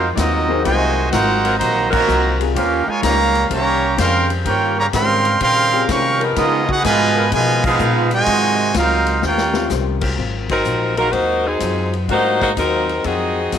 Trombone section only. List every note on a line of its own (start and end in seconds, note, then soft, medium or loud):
0.15 0.64 F#3 medium
0.15 0.64 C4 medium
0.15 0.64 D#4 medium
0.63 1.08 C3 loud
0.63 1.08 D#3 medium
0.63 1.08 G#3 loud
1.11 1.56 C4 medium
1.11 1.56 D#4 medium
1.11 1.56 F#4 medium
1.58 1.90 D#3 medium
1.58 1.90 F#3 medium
1.58 1.89 A#3 medium
1.92 2.36 D#3 medium
1.92 2.36 F#3 medium
1.92 2.36 A#3 medium
2.56 2.86 A#3 medium
2.56 2.85 C#4 medium
2.56 2.86 F4 medium
2.88 3.03 G#3 medium
3.03 3.48 C#3 medium
3.03 3.48 G3 medium
3.03 3.48 A#3 loud
3.51 3.95 G3 medium
3.51 3.95 A#3 medium
3.51 3.95 C#4 medium
3.98 4.28 C#3 medium
3.98 4.28 G3 medium
3.98 4.28 C4 medium
4.46 4.76 A#3 medium
4.46 4.76 C#4 medium
4.46 4.76 G4 medium
4.78 4.86 C#3 medium
4.78 4.85 G3 medium
4.78 4.85 A#3 medium
4.92 5.37 C#3 medium
4.92 5.38 G3 medium
4.92 5.38 C4 medium
5.41 5.86 C#3 medium
5.41 5.86 G3 medium
5.41 5.86 C4 medium
5.90 6.22 G3 medium
5.90 6.22 A#3 loud
5.90 6.22 C#4 medium
6.36 6.67 G#3 loud
6.36 6.66 B3 loud
6.36 6.67 D#4 medium
6.69 6.84 F#4 medium
6.83 7.28 B2 loud
6.83 7.28 F3 loud
6.83 7.28 G#3 loud
7.32 7.62 B2 medium
7.32 7.62 F3 medium
7.32 7.62 G#3 medium
7.65 8.09 G#3 medium
7.65 8.09 B3 loud
7.65 8.09 F4 medium
8.13 8.71 C3 medium
8.13 8.72 D#3 loud
8.13 8.72 G#3 loud
8.76 9.20 F#3 medium
8.76 9.20 C4 medium
8.76 9.20 F4 medium
9.23 9.67 A#3 medium
9.23 9.67 C#4 medium
9.23 9.68 G4 medium